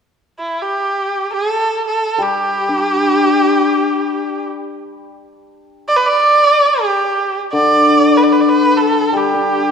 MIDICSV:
0, 0, Header, 1, 3, 480
1, 0, Start_track
1, 0, Tempo, 500000
1, 9325, End_track
2, 0, Start_track
2, 0, Title_t, "Erhu"
2, 0, Program_c, 0, 110
2, 373, Note_on_c, 0, 64, 53
2, 598, Note_on_c, 0, 67, 60
2, 612, Note_off_c, 0, 64, 0
2, 1251, Note_off_c, 0, 67, 0
2, 1279, Note_on_c, 0, 68, 68
2, 1443, Note_off_c, 0, 68, 0
2, 1443, Note_on_c, 0, 69, 68
2, 1753, Note_off_c, 0, 69, 0
2, 1806, Note_on_c, 0, 69, 62
2, 2142, Note_on_c, 0, 67, 74
2, 2156, Note_off_c, 0, 69, 0
2, 4279, Note_off_c, 0, 67, 0
2, 5648, Note_on_c, 0, 74, 82
2, 5728, Note_on_c, 0, 71, 75
2, 5742, Note_off_c, 0, 74, 0
2, 5820, Note_on_c, 0, 74, 89
2, 5834, Note_off_c, 0, 71, 0
2, 6566, Note_on_c, 0, 67, 71
2, 6581, Note_off_c, 0, 74, 0
2, 7084, Note_off_c, 0, 67, 0
2, 7228, Note_on_c, 0, 74, 80
2, 7845, Note_on_c, 0, 71, 57
2, 7859, Note_off_c, 0, 74, 0
2, 7906, Note_on_c, 0, 74, 59
2, 7920, Note_off_c, 0, 71, 0
2, 7993, Note_on_c, 0, 71, 53
2, 8007, Note_off_c, 0, 74, 0
2, 8073, Note_on_c, 0, 74, 60
2, 8087, Note_off_c, 0, 71, 0
2, 8153, Note_on_c, 0, 71, 76
2, 8168, Note_off_c, 0, 74, 0
2, 8422, Note_on_c, 0, 69, 69
2, 8437, Note_off_c, 0, 71, 0
2, 8803, Note_on_c, 0, 67, 62
2, 8817, Note_off_c, 0, 69, 0
2, 9325, Note_off_c, 0, 67, 0
2, 9325, End_track
3, 0, Start_track
3, 0, Title_t, "Hammered dulcimer"
3, 0, Program_c, 1, 15
3, 2096, Note_on_c, 1, 55, 48
3, 2583, Note_on_c, 1, 62, 36
3, 4471, Note_off_c, 1, 62, 0
3, 4933, Note_off_c, 1, 55, 0
3, 7227, Note_on_c, 1, 50, 45
3, 8764, Note_on_c, 1, 55, 44
3, 8968, Note_on_c, 1, 62, 38
3, 9325, Note_off_c, 1, 50, 0
3, 9325, Note_off_c, 1, 55, 0
3, 9325, Note_off_c, 1, 62, 0
3, 9325, End_track
0, 0, End_of_file